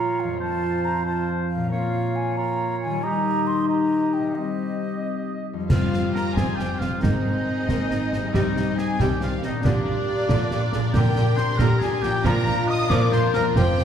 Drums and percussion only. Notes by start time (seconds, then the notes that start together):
5.70 concert bass drum, snare, crash
5.93 snare
6.16 snare
6.37 concert bass drum, snare
6.59 snare
6.81 snare
7.03 concert bass drum, snare
7.69 concert bass drum, snare
7.90 snare
8.13 snare
8.34 concert bass drum, snare
8.57 snare
8.78 snare
9.00 concert bass drum, snare
9.21 snare
9.43 snare
9.64 concert bass drum, snare
10.29 concert bass drum, snare
10.51 snare
10.73 snare
10.94 concert bass drum, snare, crash
11.16 snare
11.37 snare
11.59 concert bass drum, snare
11.81 snare
12.03 snare
12.24 concert bass drum, snare
12.90 concert bass drum, snare
13.12 snare
13.34 snare
13.56 concert bass drum, snare
13.78 snare